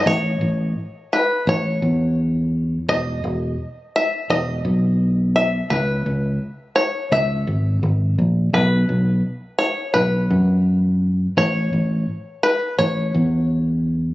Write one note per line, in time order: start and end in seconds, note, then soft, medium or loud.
0.06 0.37 A1 medium
0.06 1.13 C#5 loud
0.41 0.73 A1 medium
1.13 1.48 B4 medium
1.47 1.79 A1 medium
1.47 2.14 C#5 medium
1.82 2.77 E2 medium
2.88 3.20 E1 loud
2.88 3.95 D#5 loud
3.24 3.55 E1 medium
3.96 4.30 E5 loud
4.30 4.61 E1 medium
4.30 5.35 D#5 loud
4.65 5.60 B1 medium
5.36 5.72 E5 medium
5.70 6.02 C#2 medium
5.70 6.80 B4 medium
6.06 6.38 C#2 medium
6.76 7.12 C#5 medium
7.12 7.44 C#2 medium
7.12 8.14 E5 medium
7.47 7.79 G#1 medium
7.83 8.15 G#1 medium
8.18 8.50 A#1 medium
8.53 8.85 B1 medium
8.53 9.58 B4 medium
8.89 9.21 B1 medium
9.59 9.93 C#5 medium
9.94 10.27 B1 medium
9.94 10.61 B4 medium
10.30 11.26 F#2 medium
11.37 11.69 A1 loud
11.37 12.43 C#5 loud
11.73 12.04 A1 medium
12.43 12.78 B4 medium
12.79 13.11 A1 medium
12.79 13.46 C#5 medium
13.14 14.10 E2 medium